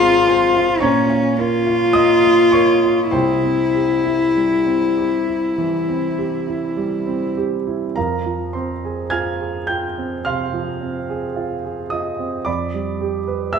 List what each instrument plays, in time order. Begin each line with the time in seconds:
Already playing: grand piano G#1 G#2 G#3 F4 G#4 A#4 F5 A#5, cello F4
0.00 grand piano C4
0.27 grand piano G#4 C5 C6
0.57 grand piano F4
0.81 grand piano A#2 C#5 A#5 C#6, cello C#4
1.10 grand piano F4
1.39 cello F4, grand piano A#4
1.67 grand piano F4
1.93 grand piano A#3 D#5 D#6
2.24 grand piano F4
2.52 grand piano A#4 C#5 C#6
2.84 grand piano F4
3.10 grand piano C2 C3 C5 G5 C6, cello E4
3.44 grand piano C4
3.75 grand piano G4
4.05 grand piano E4
4.36 grand piano G3
4.67 grand piano C4
4.98 grand piano G4
5.27 grand piano E4
5.58 grand piano E3
5.89 grand piano C4
6.18 grand piano G4
6.48 grand piano E4
6.77 grand piano G3
7.07 grand piano C4
7.37 grand piano G4
7.67 grand piano E4
7.96 grand piano F2 A#4 F5 A#5
8.26 grand piano F3
8.53 grand piano C4 C5 C6
8.85 grand piano G#4
9.10 grand piano F4 G#5 F6 G#6
9.41 grand piano G#4
9.67 grand piano F4 G5 G6
9.98 grand piano C4
10.25 grand piano C3 F5 C6 F6
10.53 grand piano F3
10.81 grand piano C4
11.10 grand piano G#4
11.36 grand piano F4
11.65 grand piano G#4
11.90 grand piano F4 D#5 D#6
12.19 grand piano C4
12.45 grand piano F2 D5 B5 D6
12.74 grand piano G3
13.01 grand piano G4
13.27 grand piano B4
13.53 grand piano G4 E5 E6